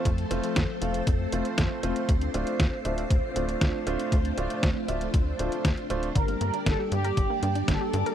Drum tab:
HH |xxxxx-xxx-xxx-xx|xxxxx-xxx-xxx-xx|xxxxx-xxx-xxxxxx|xxxxx-xxx-xxx-xx|
SD |----o-------o---|----o-------o---|----o-------o---|----o-------o---|
BD |o---o---o---o---|o---o---o---o---|o---o---o---o---|o---o---o---o---|